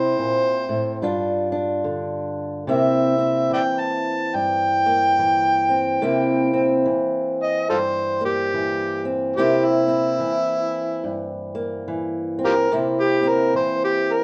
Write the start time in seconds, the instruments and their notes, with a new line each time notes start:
Already playing: steel-string acoustic guitar C3 C4 E4, harmonica C5
0.19 steel-string acoustic guitar A#2
0.69 steel-string acoustic guitar A2
1.02 steel-string acoustic guitar G2 G3 D4 F4
1.52 steel-string acoustic guitar D4
1.84 steel-string acoustic guitar D3
2.67 steel-string acoustic guitar C3 A#3 C4 E4, harmonica E5
3.50 steel-string acoustic guitar E3, harmonica D5 E5 G5
3.81 harmonica A5
4.34 steel-string acoustic guitar G2, harmonica G5
4.86 steel-string acoustic guitar A#3
5.19 steel-string acoustic guitar E3
5.69 steel-string acoustic guitar C4
6.02 steel-string acoustic guitar C3 A#3 C4 E4
6.53 steel-string acoustic guitar C4
6.86 steel-string acoustic guitar E3
7.43 harmonica D#5
7.70 steel-string acoustic guitar G2, harmonica F4 A4 C5
8.21 steel-string acoustic guitar A#3
8.25 harmonica G4
8.54 steel-string acoustic guitar E3
9.05 steel-string acoustic guitar C4
9.36 steel-string acoustic guitar C3 A#3 C4 E4, harmonica G4
9.65 harmonica E4
9.88 steel-string acoustic guitar C4
10.19 steel-string acoustic guitar E3
11.04 steel-string acoustic guitar G2
11.55 steel-string acoustic guitar A#3
11.88 steel-string acoustic guitar E3
12.39 steel-string acoustic guitar C4
12.45 harmonica F4 G4 A#4
12.71 steel-string acoustic guitar C3 A#3 C4 E4
13.01 harmonica G4
13.23 steel-string acoustic guitar C4
13.28 harmonica A#4
13.55 steel-string acoustic guitar E3, harmonica C5
13.84 harmonica G4
14.13 harmonica A#4